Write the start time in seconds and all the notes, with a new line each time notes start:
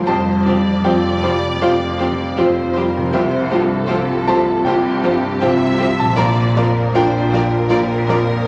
Already playing: F3 G3
0.00 F4 C5
0.07 F1 F2 F3 F4 G4 C5 A5
0.45 C3 F3 F4 G4 C5 D5
0.83 F1 F2 F3 C4 F4 G4 C5 G5
1.23 F3 G3 F4 G4 C5
1.61 F1 F2 F3 F4 G4 C5 F5
1.98 C3 F3 F4 G4 C5
2.37 F1 F2 F3 C4 F4 G4 C5
2.75 F3 G3 F4 G4 A#4 C5
2.97 C3
3.02 F3
3.06 F4
3.11 F3 F4 G4 C5 E5
3.15 C2 C3
3.50 G2 F3 F4 G4 A4 C5
3.88 C2 C3 F3 C4 F4 G4 C5
4.27 F3 F4 G4 C5 A5
4.65 C2 C3 F3 F4 G4 C5 G5
5.03 G2 F3 F4 G4 C5
5.40 C2 C3 F3 C4 F4 G4 C5 E5
5.79 F3 F4 G4 C5
5.99 A#2 A5
6.04 F3
6.09 F4
6.13 A#4 D5
6.17 A#1 A#2 F3 F4 D5 A#5
6.56 F2 F3 F4 A#4 D5
6.94 A#1 A#2 F3 D4 F4 A#4 C5 D5 G5
7.32 F3 F4 A#4 D5
7.70 A#1 A#2 F3 F4 A#4 D5 F5
8.09 F2 F3 F4 A#4 D5